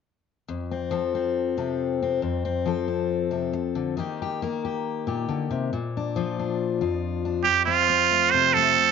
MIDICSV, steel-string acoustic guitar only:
0, 0, Header, 1, 3, 480
1, 0, Start_track
1, 0, Tempo, 436047
1, 518, Time_signature, 4, 2, 24, 8
1, 9815, End_track
2, 0, Start_track
2, 0, Title_t, "Steel-string acoustic guitar"
2, 0, Program_c, 0, 25
2, 534, Note_on_c, 0, 41, 61
2, 786, Note_on_c, 0, 60, 52
2, 1001, Note_on_c, 0, 53, 59
2, 1015, Note_on_c, 0, 69, 51
2, 1260, Note_off_c, 0, 60, 0
2, 1264, Note_on_c, 0, 60, 44
2, 1725, Note_off_c, 0, 69, 0
2, 1733, Note_on_c, 0, 48, 52
2, 1738, Note_on_c, 0, 69, 47
2, 2214, Note_off_c, 0, 60, 0
2, 2228, Note_on_c, 0, 60, 51
2, 2416, Note_off_c, 0, 53, 0
2, 2421, Note_off_c, 0, 48, 0
2, 2424, Note_off_c, 0, 69, 0
2, 2433, Note_off_c, 0, 41, 0
2, 2446, Note_on_c, 0, 41, 56
2, 2683, Note_off_c, 0, 60, 0
2, 2696, Note_on_c, 0, 60, 53
2, 2923, Note_on_c, 0, 53, 53
2, 2942, Note_on_c, 0, 69, 55
2, 3155, Note_off_c, 0, 60, 0
2, 3168, Note_on_c, 0, 60, 44
2, 3636, Note_off_c, 0, 69, 0
2, 3642, Note_on_c, 0, 48, 50
2, 3649, Note_on_c, 0, 69, 48
2, 3876, Note_off_c, 0, 48, 0
2, 4131, Note_on_c, 0, 50, 54
2, 4338, Note_off_c, 0, 53, 0
2, 4340, Note_off_c, 0, 69, 0
2, 4368, Note_off_c, 0, 41, 0
2, 4368, Note_off_c, 0, 60, 0
2, 4368, Note_on_c, 0, 51, 58
2, 4369, Note_off_c, 0, 50, 0
2, 4385, Note_on_c, 0, 58, 49
2, 4392, Note_on_c, 0, 67, 56
2, 4394, Note_on_c, 0, 63, 45
2, 4619, Note_off_c, 0, 67, 0
2, 4643, Note_on_c, 0, 67, 62
2, 4864, Note_off_c, 0, 58, 0
2, 4865, Note_off_c, 0, 67, 0
2, 4868, Note_on_c, 0, 58, 59
2, 4882, Note_on_c, 0, 70, 56
2, 5111, Note_off_c, 0, 70, 0
2, 5115, Note_on_c, 0, 67, 54
2, 5570, Note_off_c, 0, 67, 0
2, 5580, Note_on_c, 0, 46, 53
2, 5590, Note_on_c, 0, 67, 46
2, 5814, Note_off_c, 0, 46, 0
2, 5818, Note_on_c, 0, 50, 54
2, 6052, Note_off_c, 0, 50, 0
2, 6060, Note_on_c, 0, 48, 56
2, 6267, Note_off_c, 0, 67, 0
2, 6269, Note_off_c, 0, 63, 0
2, 6270, Note_off_c, 0, 58, 0
2, 6288, Note_off_c, 0, 51, 0
2, 6293, Note_off_c, 0, 48, 0
2, 6305, Note_on_c, 0, 46, 61
2, 6570, Note_on_c, 0, 62, 54
2, 6780, Note_on_c, 0, 53, 60
2, 6790, Note_on_c, 0, 65, 51
2, 7025, Note_off_c, 0, 62, 0
2, 7038, Note_on_c, 0, 62, 45
2, 7489, Note_off_c, 0, 65, 0
2, 7494, Note_off_c, 0, 46, 0
2, 7496, Note_on_c, 0, 41, 52
2, 7503, Note_on_c, 0, 65, 46
2, 7968, Note_off_c, 0, 62, 0
2, 7981, Note_on_c, 0, 62, 54
2, 8182, Note_off_c, 0, 53, 0
2, 8184, Note_off_c, 0, 62, 0
2, 8189, Note_off_c, 0, 41, 0
2, 8202, Note_on_c, 0, 41, 57
2, 8447, Note_on_c, 0, 60, 54
2, 8688, Note_off_c, 0, 60, 0
2, 8693, Note_on_c, 0, 60, 55
2, 8929, Note_on_c, 0, 57, 46
2, 9179, Note_on_c, 0, 48, 59
2, 9401, Note_off_c, 0, 57, 0
2, 9428, Note_on_c, 0, 57, 56
2, 9646, Note_off_c, 0, 48, 0
2, 9815, Note_off_c, 0, 41, 0
2, 9815, Note_off_c, 0, 57, 0
2, 9815, Note_off_c, 0, 60, 0
2, 9815, Note_off_c, 0, 65, 0
2, 9815, End_track
3, 0, Start_track
3, 0, Title_t, "Muted steel-string acoustic guitar strokes"
3, 3889, Note_on_c, 9, 29, 55
3, 3999, Note_off_c, 9, 29, 0
3, 9815, End_track
0, 0, End_of_file